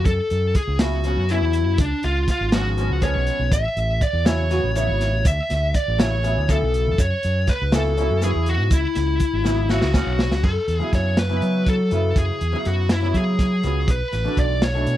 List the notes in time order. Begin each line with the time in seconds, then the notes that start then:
0.05 F#2 A4, kick, closed hi-hat
0.30 F#2, closed hi-hat
0.55 G#4, kick, closed hi-hat
0.68 C#2
0.79 C#3 F#3 B3 E4 F#4, snare, closed hi-hat
1.04 C#3 F#3 B3 C#4, closed hi-hat
1.17 F#2
1.29 C#3 F#3 B3 E4, closed hi-hat
1.42 E2
1.53 closed hi-hat
1.66 F#2
1.78 C#2 D4, kick, closed hi-hat
2.03 C#2 F4, closed hi-hat
2.28 F4, kick, snare, closed hi-hat
2.41 G#1
2.52 F3 G#3 B3 C#4 F#4, snare, closed hi-hat
2.77 F3 G#3 B3 C#4, closed hi-hat
2.90 C#2
3.01 F3 G#3 B3 C#4 C#5, kick, closed hi-hat
3.15 B1
3.27 closed hi-hat
3.39 B1
3.52 A1 E5, kick, closed hi-hat, shaker
3.77 A1, closed hi-hat
4.01 D5, kick, closed hi-hat, shaker
4.13 E2
4.25 C#3 F#3 B3 E4 C#5, snare, closed hi-hat, shaker
4.49 C#3 F#3 B3 F#4, snare, closed hi-hat
4.64 A1
4.75 C#3 F#3 B3 E4 C#5, closed hi-hat, shaker
4.88 G#1
5.01 snare, closed hi-hat
5.14 A1
5.25 D2 E5, kick, closed hi-hat, shaker
5.50 D2, snare, closed hi-hat
5.74 D5, kick, closed hi-hat, shaker
5.88 A1
5.98 C#3 F#3 B3 E4 C#5, snare, closed hi-hat, shaker
6.23 C#3 F#3 B3 E4, closed hi-hat
6.37 D2
6.48 C#3 F#3 B3 E4 A4, kick, closed hi-hat, shaker
6.62 B1
6.74 closed hi-hat
6.88 F2
6.98 F#2 C#5, kick, closed hi-hat, shaker
7.23 F#2, closed hi-hat
7.47 B4, kick, snare, closed hi-hat, shaker
7.62 C#2
7.72 C#3 F#3 B3 E4 A4, snare, closed hi-hat, shaker
7.97 C#3 F#3 B3 E4, closed hi-hat
8.11 F#2
8.21 C#3 F#3 B3 E4 G#4, snare, closed hi-hat, shaker
8.36 E2
8.46 F#4, closed hi-hat
8.61 G#2
8.71 C#2 E4, kick, closed hi-hat, shaker
8.95 C#2, snare, closed hi-hat
9.20 kick, closed hi-hat, shaker
9.33 G#1
9.44 C#3 F#3 B3 E4, snare, shaker
9.69 C#3 F#3 B3 E4 F#4, snare, shaker
9.82 C#2, snare
9.93 C#3 F#3 B3 C#4, kick, snare, shaker
10.07 B1
10.19 snare
10.31 C#2, snare
10.44 F#2 A4, kick, crash
10.68 E2, closed hi-hat
10.79 C#3 F#3 B3 E4 G#4
10.93 F#2 C#5, kick, snare, closed hi-hat
11.17 B4, snare, closed hi-hat
11.29 C#3 F#3 B3 E4
11.42 F#3, closed hi-hat
11.66 A4, kick, closed hi-hat
11.91 F#2 C#3 F#3 B3 E4, closed hi-hat
12.16 F#2 G#4, kick, closed hi-hat
12.41 E2, closed hi-hat
12.52 C#3 F#3 B3 E4
12.65 F#2 F#4, closed hi-hat
12.89 E4, snare, closed hi-hat
13.02 C#3 F#3 B3 E4
13.14 F#3 G#4, kick, closed hi-hat
13.39 kick, snare, closed hi-hat
13.63 C#2 C#3 F#3 B3 F#4, closed hi-hat
13.88 B1 B4, kick, closed hi-hat
14.12 A1, snare, closed hi-hat
14.24 B2 E3 A3 D4
14.37 B1 D5, kick, closed hi-hat
14.62 C#5, snare, closed hi-hat
14.74 B2 E3 A3 D4
14.87 B2, closed hi-hat